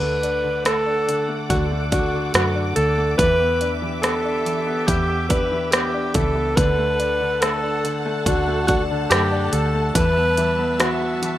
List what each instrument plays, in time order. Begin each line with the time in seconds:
Already playing: fingered electric bass D2, grand piano D3, string section A4 F#5 D6, alto saxophone B4
0.02 grand piano A3
0.23 grand piano D4, closed hi-hat
0.44 grand piano D3
0.65 grand piano A3, alto saxophone A4, cross-stick, closed hi-hat
0.86 grand piano D4
1.07 grand piano D3, closed hi-hat
1.28 grand piano A3
1.49 fingered electric bass D2, grand piano D3, alto saxophone F#4, kick, closed hi-hat
1.71 grand piano A3
1.92 grand piano D4, alto saxophone F#4, kick, closed hi-hat
2.13 grand piano D3
2.34 fingered electric bass F#2, grand piano A3, alto saxophone F#4, cross-stick, closed hi-hat
2.55 grand piano D4
2.76 fingered electric bass D2, grand piano D3, alto saxophone A4, closed hi-hat
2.97 grand piano A3
3.18 fingered electric bass E2, grand piano E3, string section G4 E5, alto saxophone B4, kick, closed hi-hat
3.40 grand piano B3
3.61 grand piano D4, closed hi-hat
3.82 grand piano E3
4.02 grand piano B3, alto saxophone A4, cross-stick, closed hi-hat
4.24 grand piano D4
4.45 grand piano E3, closed hi-hat
4.67 grand piano B3
4.87 fingered electric bass E2, grand piano E3, alto saxophone G4, kick, closed hi-hat
5.09 grand piano B3
5.29 grand piano D4, alto saxophone B4, kick, closed hi-hat
5.52 grand piano E3
5.71 grand piano B3, alto saxophone G4, cross-stick, closed hi-hat
5.94 grand piano D4
6.14 fingered electric bass C#2, grand piano E3, alto saxophone A4, kick, closed hi-hat
6.35 grand piano B3
6.56 fingered electric bass D2, grand piano D3, string section A4 F#5 A5, alto saxophone B4, kick, closed hi-hat
6.78 grand piano A3
6.99 grand piano D4, closed hi-hat
7.20 grand piano D3
7.42 grand piano A3, alto saxophone A4, cross-stick, closed hi-hat
7.63 grand piano D4
7.84 grand piano D3, closed hi-hat
8.05 grand piano A3
8.26 fingered electric bass D2, grand piano D3, alto saxophone F#4, kick, closed hi-hat
8.47 grand piano A3
8.67 grand piano D4, alto saxophone F#4, kick, closed hi-hat
8.90 grand piano D3
9.10 fingered electric bass F#2, grand piano A3, alto saxophone G4, cross-stick, closed hi-hat
9.32 grand piano D4
9.53 fingered electric bass D2, grand piano D3, alto saxophone A4, closed hi-hat
9.74 grand piano A3
9.95 fingered electric bass E2, grand piano E3, string section G3 E5, alto saxophone B4, kick, closed hi-hat
10.17 grand piano B3
10.37 grand piano E3, closed hi-hat
10.59 grand piano B3
10.80 grand piano E3, alto saxophone F#4, cross-stick, closed hi-hat
11.01 grand piano B3
11.22 grand piano E3, closed hi-hat